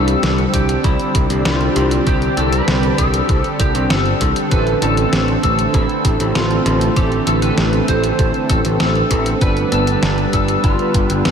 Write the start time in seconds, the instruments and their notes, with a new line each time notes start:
Already playing: picked electric bass C2, analog synth pad D3 G3 C4 D4 G4, lead electric guitar A4
0.08 closed hi-hat
0.23 picked electric bass C2, snare, closed hi-hat
0.38 closed hi-hat
0.54 picked electric bass C2, lead electric guitar G4, kick, closed hi-hat
0.69 closed hi-hat
0.84 picked electric bass C2, lead electric guitar E4, kick, closed hi-hat
0.99 closed hi-hat
1.15 picked electric bass C2, kick, closed hi-hat
1.30 picked electric bass C2, closed hi-hat
1.45 picked electric bass C2, lead electric guitar F4, snare, closed hi-hat
1.61 closed hi-hat
1.76 picked electric bass C2, closed hi-hat
1.91 closed hi-hat
2.06 picked electric bass C2, lead electric guitar G4, kick, closed hi-hat
2.22 closed hi-hat
2.37 picked electric bass C2, lead electric guitar A4, closed hi-hat
2.52 lead electric guitar B4, closed hi-hat
2.68 picked electric bass C2, snare, closed hi-hat
2.83 closed hi-hat
2.98 picked electric bass C2, lead electric guitar A4, kick, closed hi-hat
3.14 closed hi-hat
3.29 picked electric bass C2, kick, closed hi-hat
3.44 closed hi-hat
3.59 picked electric bass C2, lead electric guitar G4, kick, closed hi-hat
3.75 picked electric bass C2, closed hi-hat
3.90 picked electric bass G1, lead electric guitar A4, snare, closed hi-hat
4.06 closed hi-hat
4.21 picked electric bass C2, kick, closed hi-hat
4.36 closed hi-hat
4.51 picked electric bass A1, analog polysynth E3 C4 A4, analog synth pad A3, lead electric guitar B4, kick, closed hi-hat
4.67 closed hi-hat
4.82 picked electric bass A1, lead electric guitar A4, closed hi-hat
4.97 analog polysynth C4 A4, closed hi-hat
5.13 picked electric bass A1, snare, closed hi-hat
5.28 closed hi-hat
5.43 picked electric bass A1, lead electric guitar A4, kick, closed hi-hat
5.59 closed hi-hat
5.74 picked electric bass A1, lead electric guitar E4, kick, closed hi-hat
5.89 closed hi-hat
6.05 picked electric bass A1, kick, closed hi-hat
6.20 picked electric bass A1, closed hi-hat
6.35 picked electric bass A1, lead electric guitar F4, snare, closed hi-hat
6.51 closed hi-hat
6.66 picked electric bass A1, closed hi-hat
6.81 closed hi-hat
6.96 picked electric bass A1, analog polysynth E3 C4 A4, lead electric guitar G4, kick, closed hi-hat
7.12 closed hi-hat
7.27 picked electric bass A1, lead electric guitar A4, closed hi-hat
7.42 analog polysynth E3 C4 A4, lead electric guitar B4, closed hi-hat
7.58 picked electric bass A1, snare, closed hi-hat
7.73 closed hi-hat
7.88 picked electric bass A1, lead electric guitar C5, kick, closed hi-hat
8.04 closed hi-hat
8.19 picked electric bass A1, kick, closed hi-hat
8.34 closed hi-hat
8.49 picked electric bass A1, lead electric guitar A4, kick, closed hi-hat
8.65 picked electric bass A1, closed hi-hat
8.80 picked electric bass A1, lead electric guitar A4, snare, closed hi-hat
8.95 closed hi-hat
9.11 picked electric bass A1, kick, closed hi-hat
9.26 closed hi-hat
9.41 picked electric bass G1, analog synth pad D3 G3 B3, analog polysynth G3 D4 B4, lead electric guitar B4, kick, closed hi-hat
9.57 closed hi-hat
9.72 picked electric bass G1, lead electric guitar A4, closed hi-hat
9.87 analog polysynth G3 D4 B4, closed hi-hat
10.03 picked electric bass G1, snare, closed hi-hat
10.18 closed hi-hat
10.33 picked electric bass G1, lead electric guitar A4, kick, closed hi-hat
10.48 closed hi-hat
10.64 picked electric bass G1, lead electric guitar F4, kick, closed hi-hat
10.79 closed hi-hat
10.94 picked electric bass G1, kick, closed hi-hat
11.10 picked electric bass G1, closed hi-hat
11.25 picked electric bass G1, lead electric guitar A4, snare, closed hi-hat